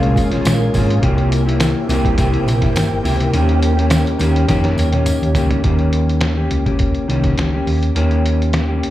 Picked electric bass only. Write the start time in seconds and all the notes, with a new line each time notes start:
Already playing: C2
0.16 A#1
0.45 A#1
0.75 G#1
1.03 C2
1.89 C2
2.46 A#1
2.76 G1
3.04 C#2
3.33 D#2
4.20 D#2
4.49 F2
4.77 D#2
5.22 D#2
5.35 C#2
5.64 D#2
6.51 C#2
7.08 C2
7.37 C#2
7.66 D#2
7.95 D#2
8.83 C#2